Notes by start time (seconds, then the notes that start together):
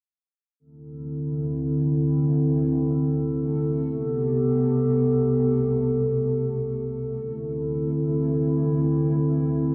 0.60 D3 C4 E4 A4
3.86 C3 B3 G4
7.13 D3 C4 E4